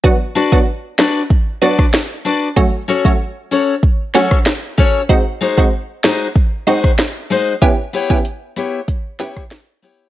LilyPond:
<<
  \new Staff \with { instrumentName = "Steel-string acoustic guitar" } { \time 4/4 \key b \minor \tempo 4 = 95 r8 <d' fis' b' d''>8 r8 <d' fis' b' d''>8 r8 <d' fis' b' d''>8 r8 <d' fis' b' d''>8 | r8 <cis' fis' a' cis''>8 r8 <cis' fis' a' cis''>8 r8 <cis' fis' a' cis''>8 r8 <cis' fis' a' cis''>8 | r8 <gis dis' fis' bis'>8 r8 <gis dis' fis' bis'>8 r8 <gis dis' fis' bis'>8 r8 <gis dis' fis' bis'>8 | r8 <b e' g' cis''>8 r8 <b e' g' cis''>8 r8 <b e' g' cis''>8 r8 <b e' g' cis''>8 | }
  \new Staff \with { instrumentName = "Synth stab" } { \time 4/4 \key b \minor <fis b d' fis'>16 r8 <fis b d' fis'>16 r4. <fis b d' fis'>16 r4 r16 | <fis a cis' fis'>16 r8 <fis a cis' fis'>16 r4. <fis a cis' fis'>16 r4 r16 | <gis bis dis' fis'>16 r8 <gis bis dis' fis'>16 r4. <gis bis dis' fis'>16 r4 r16 | <b cis' e' g'>16 r8 <b cis' e' g'>16 r4. <b cis' e' g'>16 r4 r16 | }
  \new DrumStaff \with { instrumentName = "Drums" } \drummode { \time 4/4 bd8. bd16 r8 sn8 bd8. <bd ss>16 sn4 | bd8. bd16 r4 bd8 sn16 <bd ss>16 sn8 bd8 | bd8. bd16 r8 sn8 bd8. <bd ss>16 sn4 | <hh bd>8 hh16 bd16 hh8 hh8 <hh bd>8 <hh sn>16 <bd ss>16 <hh sn>8 hh8 | }
>>